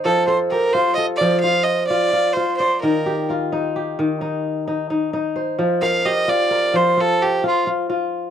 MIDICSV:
0, 0, Header, 1, 3, 480
1, 0, Start_track
1, 0, Tempo, 461894
1, 50, Time_signature, 12, 3, 24, 8
1, 8628, End_track
2, 0, Start_track
2, 0, Title_t, "Fiddle"
2, 0, Program_c, 0, 110
2, 45, Note_on_c, 0, 69, 79
2, 271, Note_off_c, 0, 69, 0
2, 278, Note_on_c, 0, 72, 80
2, 389, Note_off_c, 0, 72, 0
2, 521, Note_on_c, 0, 70, 80
2, 756, Note_on_c, 0, 72, 90
2, 772, Note_off_c, 0, 70, 0
2, 978, Note_off_c, 0, 72, 0
2, 985, Note_on_c, 0, 75, 89
2, 1099, Note_off_c, 0, 75, 0
2, 1211, Note_on_c, 0, 74, 86
2, 1446, Note_off_c, 0, 74, 0
2, 1452, Note_on_c, 0, 77, 98
2, 1697, Note_on_c, 0, 75, 85
2, 1713, Note_off_c, 0, 77, 0
2, 1933, Note_off_c, 0, 75, 0
2, 1939, Note_on_c, 0, 74, 97
2, 2422, Note_on_c, 0, 72, 82
2, 2437, Note_off_c, 0, 74, 0
2, 2661, Note_off_c, 0, 72, 0
2, 2668, Note_on_c, 0, 72, 85
2, 2903, Note_off_c, 0, 72, 0
2, 2921, Note_on_c, 0, 70, 69
2, 3430, Note_off_c, 0, 70, 0
2, 6043, Note_on_c, 0, 77, 99
2, 6292, Note_on_c, 0, 75, 98
2, 6308, Note_off_c, 0, 77, 0
2, 6536, Note_on_c, 0, 74, 103
2, 6552, Note_off_c, 0, 75, 0
2, 7021, Note_on_c, 0, 72, 86
2, 7037, Note_off_c, 0, 74, 0
2, 7277, Note_on_c, 0, 69, 90
2, 7292, Note_off_c, 0, 72, 0
2, 7507, Note_on_c, 0, 67, 76
2, 7523, Note_off_c, 0, 69, 0
2, 7739, Note_off_c, 0, 67, 0
2, 7766, Note_on_c, 0, 65, 67
2, 7973, Note_off_c, 0, 65, 0
2, 8628, End_track
3, 0, Start_track
3, 0, Title_t, "Kora"
3, 0, Program_c, 1, 46
3, 0, Note_on_c, 1, 63, 74
3, 0, Note_on_c, 1, 72, 61
3, 53, Note_on_c, 1, 53, 79
3, 286, Note_on_c, 1, 69, 64
3, 538, Note_on_c, 1, 67, 58
3, 774, Note_on_c, 1, 65, 79
3, 1008, Note_off_c, 1, 69, 0
3, 1012, Note_on_c, 1, 69, 61
3, 1043, Note_off_c, 1, 72, 0
3, 1243, Note_off_c, 1, 53, 0
3, 1255, Note_on_c, 1, 53, 78
3, 1259, Note_off_c, 1, 63, 0
3, 1488, Note_off_c, 1, 65, 0
3, 1492, Note_on_c, 1, 65, 69
3, 1973, Note_off_c, 1, 65, 0
3, 1977, Note_on_c, 1, 65, 80
3, 2006, Note_off_c, 1, 67, 0
3, 2210, Note_off_c, 1, 65, 0
3, 2215, Note_on_c, 1, 65, 63
3, 2381, Note_off_c, 1, 69, 0
3, 2455, Note_off_c, 1, 65, 0
3, 2459, Note_on_c, 1, 65, 73
3, 2700, Note_on_c, 1, 74, 60
3, 2942, Note_on_c, 1, 51, 78
3, 2986, Note_off_c, 1, 53, 0
3, 3180, Note_on_c, 1, 67, 66
3, 3423, Note_off_c, 1, 65, 0
3, 3428, Note_on_c, 1, 65, 61
3, 3662, Note_on_c, 1, 63, 72
3, 3724, Note_off_c, 1, 74, 0
3, 3902, Note_off_c, 1, 67, 0
3, 3907, Note_on_c, 1, 67, 59
3, 4133, Note_off_c, 1, 51, 0
3, 4145, Note_on_c, 1, 51, 69
3, 4372, Note_off_c, 1, 63, 0
3, 4376, Note_on_c, 1, 63, 63
3, 4855, Note_off_c, 1, 63, 0
3, 4859, Note_on_c, 1, 63, 73
3, 5001, Note_off_c, 1, 65, 0
3, 5090, Note_off_c, 1, 63, 0
3, 5094, Note_on_c, 1, 63, 64
3, 5331, Note_off_c, 1, 63, 0
3, 5335, Note_on_c, 1, 63, 70
3, 5374, Note_off_c, 1, 67, 0
3, 5567, Note_on_c, 1, 72, 54
3, 5805, Note_on_c, 1, 53, 76
3, 5867, Note_off_c, 1, 51, 0
3, 6048, Note_on_c, 1, 70, 64
3, 6292, Note_on_c, 1, 67, 66
3, 6525, Note_on_c, 1, 65, 76
3, 6756, Note_off_c, 1, 70, 0
3, 6761, Note_on_c, 1, 70, 60
3, 6801, Note_off_c, 1, 72, 0
3, 6987, Note_off_c, 1, 53, 0
3, 6999, Note_on_c, 1, 53, 76
3, 7021, Note_off_c, 1, 63, 0
3, 7241, Note_off_c, 1, 65, 0
3, 7246, Note_on_c, 1, 65, 69
3, 7724, Note_off_c, 1, 65, 0
3, 7728, Note_on_c, 1, 65, 78
3, 7759, Note_off_c, 1, 67, 0
3, 7965, Note_off_c, 1, 65, 0
3, 7969, Note_on_c, 1, 65, 62
3, 8083, Note_off_c, 1, 70, 0
3, 8201, Note_off_c, 1, 65, 0
3, 8205, Note_on_c, 1, 65, 73
3, 8628, Note_off_c, 1, 53, 0
3, 8628, Note_off_c, 1, 65, 0
3, 8628, End_track
0, 0, End_of_file